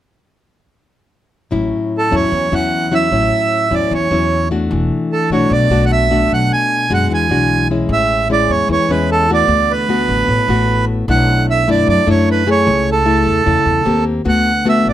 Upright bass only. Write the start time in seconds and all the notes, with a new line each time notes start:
1.52 A1
2.12 E2
2.32 E2
2.52 E2
3.11 A1
3.71 E2
3.91 E2
4.11 E2
4.71 E1
5.30 B1
5.50 B1
5.70 B1
6.30 B1
6.90 F#2
7.09 E2
7.29 B1
7.89 A1
8.49 E2
8.69 E2
8.89 E2
9.48 D2
10.08 A1
10.28 A1
10.48 A1
11.08 B1
11.68 F#2
11.88 F#2
12.07 F#2
12.67 C#2
13.27 E2
13.47 E2
13.66 E2
13.86 D#2
14.25 D2
14.85 A1